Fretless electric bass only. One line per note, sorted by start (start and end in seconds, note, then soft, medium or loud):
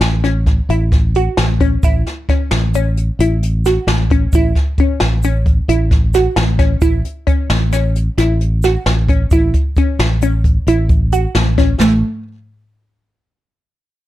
0.01 0.59 A1 medium
0.69 1.27 A1 medium
1.37 1.76 A1 medium
1.83 2.02 A1 medium
2.51 3.09 A1 medium
3.19 3.77 A1 medium
3.87 4.26 A1 medium
4.33 4.52 A1 medium
5.01 5.59 A1 medium
5.68 6.26 A1 medium
6.36 6.75 A1 medium
6.81 7.01 A1 medium
7.50 8.08 A1 medium
8.18 8.76 A1 medium
8.86 9.25 A1 medium
9.31 9.51 A1 medium
9.99 10.57 A1 medium
10.67 11.25 A1 medium
11.35 11.74 A1 medium
11.79 12.01 A1 medium